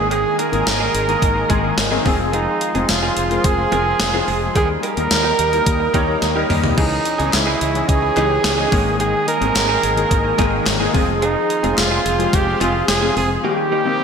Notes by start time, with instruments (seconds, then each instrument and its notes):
Already playing: fretless electric bass G#1, grand piano D#3 G#3 A#3 G#4, analog synth pad A#4 D#5 G#5 D#6
0.11 clean electric guitar G#3 A#3 D#4 G#4, flugelhorn G#4, closed hi-hat
0.38 clean electric guitar G#3 A#3 D#4 G#4, flugelhorn A#4, closed hi-hat
0.52 fretless electric bass G#1, grand piano D#3 G#3 A#3 G#4, clean electric guitar G#3 A#3 D#4 G#4, closed hi-hat
0.66 fretless electric bass G#1, muted clean electric guitar stroke, snare, closed hi-hat
0.80 clean electric guitar G#3 A#3 D#4 G#4
0.94 fretless electric bass G#1, clean electric guitar G#3 A#3 D#4 G#4, closed hi-hat
1.08 grand piano D#3 G#3 A#3 G#4, closed hi-hat
1.22 fretless electric bass G#1, muted clean electric guitar stroke, kick, closed hi-hat
1.36 muted clean electric guitar stroke
1.49 fretless electric bass G#1, grand piano D#3 G#3 A#3 G#4 C6, clean electric guitar G#3 A#3 D#4 G#4, kick, closed hi-hat
1.59 grand piano A#5
1.63 clean electric guitar G#3 A#3 D#4 G#4
1.77 fretless electric bass G#1, snare, closed hi-hat
1.91 grand piano D#3 G#3 A#3 C4 G5, clean electric guitar G#3 A#3 D#4 G#4
2.05 fretless electric bass F1, grand piano F3 G#3 C4 G#4 F5, clean electric guitar G#3 C4 F4 G#4, analog synth pad G#4 C5 F5 C6, kick, open hi-hat
2.33 clean electric guitar G#3 C4 F4 G#4, flugelhorn D#4, closed hi-hat
2.61 muted clean electric guitar stroke, closed hi-hat
2.75 fretless electric bass F1, grand piano F3 G#3 C4 G#4, clean electric guitar G#3 C4 F4 G#4, closed hi-hat
2.89 fretless electric bass F1, flugelhorn F4, muted clean electric guitar stroke, snare, closed hi-hat
3.03 clean electric guitar G#3 C4 F4 G#4
3.17 fretless electric bass F1, clean electric guitar G#3 C4 F4 G#4, closed hi-hat
3.30 grand piano F3 G#3 C4 A#4, closed hi-hat
3.44 fretless electric bass F1, flugelhorn G#4, muted clean electric guitar stroke, kick, closed hi-hat
3.58 muted clean electric guitar stroke
3.71 fretless electric bass F1, grand piano F3 G#3 C4 A#4, clean electric guitar G#3 C4 F4 G#4, closed hi-hat
3.86 muted clean electric guitar stroke
4.00 fretless electric bass F1, muted clean electric guitar stroke, snare, closed hi-hat
4.13 grand piano F3 G#3 C4 G#4, clean electric guitar G#3 C4 F4 G#4
4.27 fretless electric bass F1, clean electric guitar G#3 C4 F4 G#4, open hi-hat
4.42 muted clean electric guitar stroke
4.55 fretless electric bass D#2, grand piano G3 A#3 D#4 A#4, clean electric guitar G3 A#3 D#4 G4, flugelhorn G#4, analog synth pad A#4 D#5 G5 D#6, kick, closed hi-hat
4.83 clean electric guitar G3 A#3 D#4 G4, flugelhorn A#4, closed hi-hat
4.96 fretless electric bass D#2, grand piano G3 A#3 D#4 A#4, clean electric guitar G3 A#3 D#4 G4, closed hi-hat
5.11 fretless electric bass D#2, snare, closed hi-hat
5.24 clean electric guitar G3 A#3 D#4 G4
5.39 fretless electric bass D#2, clean electric guitar G3 A#3 D#4 G4, closed hi-hat
5.52 grand piano G3 A#3 D#4 A#4, muted clean electric guitar stroke, closed hi-hat
5.66 fretless electric bass D#2, muted clean electric guitar stroke, kick, closed hi-hat
5.80 muted clean electric guitar stroke
5.94 fretless electric bass D#2, clean electric guitar G3 A#3 D#4 G4, grand piano G3 A#3 D#4 C#5, kick, closed hi-hat
6.08 clean electric guitar G3 A#3 D#4 G4
6.22 fretless electric bass D#2, muted clean electric guitar stroke, snare, closed hi-hat
6.35 grand piano G3 A#3 D#4 A#4, clean electric guitar G3 A#3 D#4 G4
6.49 fretless electric bass D#2, clean electric guitar G3 A#3 D#4 G4, mid tom, open hi-hat
6.63 muted clean electric guitar stroke, floor tom
6.77 fretless electric bass C#2, clean electric guitar E3 G#3 D#4 G#4, grand piano E3 C#4 D#4 G#4, flugelhorn D#4, analog synth pad C#5 D#5 G#5, kick, crash
6.91 muted clean electric guitar stroke
7.05 muted clean electric guitar stroke, closed hi-hat
7.18 fretless electric bass C#2, grand piano E3 C#4 D#4 G#4, clean electric guitar E3 G#3 D#4 G#4, closed hi-hat
7.33 fretless electric bass C#2, flugelhorn E4, snare, clap, closed hi-hat
7.47 clean electric guitar E3 G#3 D#4 G#4
7.61 fretless electric bass C#2, clean electric guitar E3 G#3 D#4 G#4, closed hi-hat
7.74 grand piano E3 C#4 D#4 G#4, muted clean electric guitar stroke, closed hi-hat
7.88 fretless electric bass C#2, flugelhorn G#4, muted clean electric guitar stroke, kick, closed hi-hat
8.02 muted clean electric guitar stroke
8.16 fretless electric bass C#2, grand piano E3 C#4 D#4 G4, clean electric guitar E3 G#3 D#4 G#4, clap, closed hi-hat
8.30 muted clean electric guitar stroke
8.44 fretless electric bass C#2, snare, clap, closed hi-hat
8.58 grand piano E3 C#4 D#4 G#4, clean electric guitar E3 G#3 D#4 G#4
8.71 fretless electric bass G#1, grand piano D#3 G#3 A#3 G#4, clean electric guitar G#3 A#3 D#4 G#4, analog synth pad A#4 D#5, kick, open hi-hat
8.86 muted clean electric guitar stroke
8.99 clean electric guitar G#3 A#3 D#4 G#4, flugelhorn G#4, closed hi-hat
9.27 clean electric guitar G#3 A#3 D#4 G#4, flugelhorn A#4, closed hi-hat
9.41 fretless electric bass G#1, grand piano D#3 G#3 A#3 C4, clean electric guitar G#3 A#3 D#4 G#4, closed hi-hat
9.55 fretless electric bass G#1, snare, clap, closed hi-hat
9.69 clean electric guitar G#3 A#3 D#4 G#4
9.83 fretless electric bass G#1, clean electric guitar G#3 A#3 D#4 G#4, closed hi-hat
9.96 grand piano D#3 G#3 A#3 G#4, closed hi-hat
10.10 fretless electric bass G#1, muted clean electric guitar stroke, kick, closed hi-hat
10.24 muted clean electric guitar stroke
10.38 fretless electric bass G#1, grand piano D#3 G#3 A#3 A#4, clean electric guitar G#3 A#3 D#4 G#4, kick, clap, closed hi-hat
10.52 clean electric guitar G#3 A#3 D#4 G#4
10.66 fretless electric bass G#1, muted clean electric guitar stroke, snare, clap, closed hi-hat
10.80 grand piano D#3 G#3 A#3 G#4, clean electric guitar G#3 A#3 D#4 G#4
10.93 fretless electric bass F1, grand piano F3 G#3 C4 G4, clean electric guitar G#3 C4 F4 G#4, analog synth pad G#4 C5 F5 C6, kick, open hi-hat
11.01 grand piano G#4
11.08 muted clean electric guitar stroke
11.22 clean electric guitar G#3 C4 F4 G#4, flugelhorn D#4, closed hi-hat
11.36 muted clean electric guitar stroke
11.49 muted clean electric guitar stroke, closed hi-hat
11.63 fretless electric bass F1, grand piano F3 G#3 C4 G#4, clean electric guitar G#3 C4 F4 G#4, closed hi-hat
11.78 fretless electric bass F1, flugelhorn F4, snare, clap, closed hi-hat
11.91 clean electric guitar G#3 C4 F4 G#4
12.05 fretless electric bass F1, clean electric guitar G#3 C4 F4 G#4, closed hi-hat
12.18 grand piano F3 G#3 C4 G4, muted clean electric guitar stroke, closed hi-hat
12.33 fretless electric bass F1, flugelhorn G4, muted clean electric guitar stroke, kick, closed hi-hat
12.47 muted clean electric guitar stroke
12.60 fretless electric bass F1, grand piano F3 G#3 C4 G#4, clean electric guitar G#3 C4 F4 G#4, flugelhorn F4, clap, closed hi-hat
12.74 muted clean electric guitar stroke
12.88 fretless electric bass F1, flugelhorn G#4, muted clean electric guitar stroke, snare, clap, closed hi-hat
13.02 grand piano F3 G#3 C4 G#4, clean electric guitar G#3 C4 F4 G#4
13.16 fretless electric bass F1, clean electric guitar G#3 C4 F4 G#4, flugelhorn G#4, open hi-hat
13.30 muted clean electric guitar stroke
13.44 grand piano D#3 G3 A#3 G4, clean electric guitar G3 A#3 D#4 G4, analog synth pad G4 A#4 D#5 A#5, flugelhorn G4
13.71 clean electric guitar G3 A#3 D#4 G4
13.85 grand piano D#3 G3 A#3 C4, clean electric guitar G3 A#3 D#4 G4
13.99 muted clean electric guitar stroke